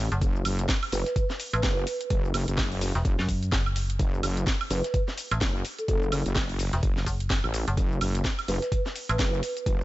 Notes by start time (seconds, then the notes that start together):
0.12 F#1, closed hi-hat, shaker
0.22 F#1, kick, closed hi-hat, shaker
0.36 shaker
0.45 F#1, closed hi-hat, open hi-hat, high woodblock, shaker
0.59 closed hi-hat, shaker
0.69 kick, snare, closed hi-hat, shaker
0.83 open hi-hat, high woodblock, shaker
0.92 F#1 B4, closed hi-hat, open hi-hat, shaker
1.06 B4, snare, closed hi-hat, shaker
1.16 kick, closed hi-hat, shaker
1.30 snare, shaker
1.40 closed hi-hat, open hi-hat, shaker
1.53 A1 B4, closed hi-hat, high woodblock, shaker
1.63 F#1, kick, snare, closed hi-hat, shaker
1.78 shaker
1.87 closed hi-hat, open hi-hat, shaker
2.01 closed hi-hat, shaker
2.10 F#1, kick, closed hi-hat, shaker
2.25 shaker
2.34 F#1, closed hi-hat, open hi-hat, high woodblock, shaker
2.48 F#1, closed hi-hat, shaker
2.58 kick, snare, closed hi-hat, shaker
2.72 open hi-hat, shaker
2.81 open hi-hat, shaker
2.95 E1, snare, closed hi-hat, shaker
3.05 F#1, kick, closed hi-hat, shaker
3.19 F#2, snare, shaker
3.29 kick, closed hi-hat, open hi-hat, shaker
3.43 closed hi-hat, shaker
3.52 F#1, kick, snare, closed hi-hat, shaker
3.66 high woodblock, shaker
3.76 closed hi-hat, open hi-hat, shaker
3.90 closed hi-hat, shaker
3.99 F#1, kick, closed hi-hat, shaker
4.14 shaker
4.23 F#1, closed hi-hat, open hi-hat, high woodblock, shaker
4.37 closed hi-hat, shaker
4.47 kick, snare, closed hi-hat, shaker
4.61 open hi-hat, high woodblock, shaker
4.70 F#1 B4, closed hi-hat, open hi-hat, shaker
4.84 B4, snare, closed hi-hat, shaker
4.94 kick, closed hi-hat, shaker
5.08 snare, shaker
5.18 closed hi-hat, open hi-hat, shaker
5.31 A1, closed hi-hat, high woodblock, shaker
5.41 F#1, kick, snare, closed hi-hat, shaker
5.56 shaker
5.65 closed hi-hat, open hi-hat, shaker
5.79 A4, closed hi-hat, shaker
5.88 F#1 A4, kick, closed hi-hat, shaker
6.03 shaker
6.12 F#1, closed hi-hat, open hi-hat, high woodblock, shaker
6.26 F#1, closed hi-hat, shaker
6.36 kick, snare, closed hi-hat, shaker
6.49 open hi-hat, shaker
6.59 open hi-hat, shaker
6.73 E1, snare, closed hi-hat, shaker
6.83 F#1, kick, closed hi-hat, shaker
6.97 snare, shaker
7.06 F#1, kick, closed hi-hat, open hi-hat, shaker
7.20 closed hi-hat, shaker
7.30 kick, snare, closed hi-hat, shaker
7.44 A1, high woodblock, shaker
7.54 closed hi-hat, open hi-hat, shaker
7.68 F#1, closed hi-hat, shaker
7.77 F#1, kick, closed hi-hat, shaker
7.92 shaker
8.01 F#1, closed hi-hat, open hi-hat, high woodblock, shaker
8.15 closed hi-hat, shaker
8.25 kick, snare, closed hi-hat, shaker
8.39 open hi-hat, high woodblock, shaker
8.48 F#1 B4, closed hi-hat, open hi-hat, shaker
8.62 B4, snare, closed hi-hat, shaker
8.72 kick, closed hi-hat, shaker
8.86 snare, shaker
8.96 closed hi-hat, open hi-hat, shaker
9.09 A1 B4, closed hi-hat, high woodblock, shaker
9.19 F#1, kick, snare, closed hi-hat, shaker
9.34 shaker
9.43 closed hi-hat, open hi-hat, shaker
9.57 closed hi-hat, shaker
9.66 F#1, kick, closed hi-hat, shaker
9.81 shaker